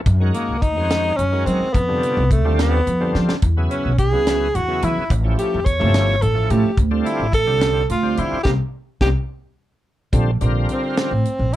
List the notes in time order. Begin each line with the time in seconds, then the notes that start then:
0.06 F#2, kick, closed hi-hat
0.20 D#3 G#3 C#4 F#4 A#4
0.34 A#3, closed hi-hat
0.48 C#2
0.62 D#4, kick, closed hi-hat
0.76 F2 D#3 G#3 C#4 F#4 C5
0.90 snare, closed hi-hat
1.17 F#2 C#4, closed hi-hat
1.32 D#3 G#3 C#4 F#4 A#4
1.46 F#3 C4, closed hi-hat
1.60 muted upright bass stroke
1.73 F2 B3, kick, closed hi-hat
1.88 C3 D3 G3 F4 A4
2.03 closed hi-hat
2.17 C2
2.31 A3, kick, closed hi-hat
2.45 D#2 D3 G3 C4 F4 A4
2.59 B3, snare, closed hi-hat
2.87 F2, closed hi-hat
3.00 D3 G3 C4 F4 A4
3.15 F3, snare
3.29 snare
3.42 E2, kick, closed hi-hat
3.57 C#3 F#3 B3 E4 G#4
3.71 C#4, closed hi-hat
3.85 B1
3.98 G#4, kick, closed hi-hat
4.12 C#2 C#3 F#3 B3 E4 G#4
4.27 snare, closed hi-hat
4.55 E2 F#4, closed hi-hat
4.68 C#3 F#3 B3 E4 G#4
4.82 E3 E4, closed hi-hat
4.97 muted upright bass stroke
5.10 A1, kick, closed hi-hat
5.23 F3 A3 C#4 E4 G4
5.38 G4, closed hi-hat
5.54 E2
5.65 C#5, kick, closed hi-hat
5.79 G1 F3 A3 C#4 E4 G4
5.94 snare, closed hi-hat
6.22 A1 A4, closed hi-hat
6.34 F3 A3 C#4 E4 A4
6.50 A2 G4, closed hi-hat
6.63 muted upright bass stroke
6.78 D2, kick, closed hi-hat
6.91 D3 G3 C4 F4 A4
7.05 E4, closed hi-hat
7.20 A1
7.33 A4, kick, closed hi-hat
7.47 C2 D3 G3 C4 F4 A4
7.61 snare, closed hi-hat
7.89 D2 F4, closed hi-hat
8.03 D3 G3 C4 F4 C5
8.17 D3 E4, closed hi-hat
8.32 muted upright bass stroke
8.43 C2 A#3 C4 D#4 G4, kick, snare
9.01 C2 A#3 C4 D#4 G4, kick, snare
10.13 A#1 D3 G3 C4 F4 A4, kick, closed hi-hat
10.41 A#1 D3 G3 C4 F4 A#4, closed hi-hat
10.69 C4, closed hi-hat
10.97 snare, closed hi-hat
11.11 A1
11.25 closed hi-hat
11.39 A#1